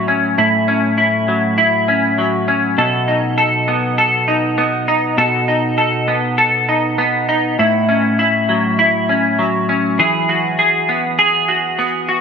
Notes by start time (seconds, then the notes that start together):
Already playing: A2 F#3 E4 A4
0.08 C#4
0.38 A2 E4
0.68 C#4
0.98 E4
1.28 F#3
1.58 E4
1.88 C#4
2.18 F#3
2.48 C#4
2.78 B2 A4
3.08 D#4
3.38 A4
3.68 B3
3.98 A4
4.28 D#4
4.58 B3
4.88 D#4
5.18 B2 A4
5.48 D#4
5.78 A4
6.08 B3
6.38 A4
6.69 D#4
6.98 B3
7.29 D#4
7.59 A2 E4
7.89 C#4
8.19 E4
8.49 F#3
8.79 E4
9.09 C#4
9.39 F#3
9.69 C#4
9.99 E3 G#4
10.29 F#4
10.59 G#4
10.89 B3
11.19 G#4
11.48 F#4
11.79 B3
12.09 F#4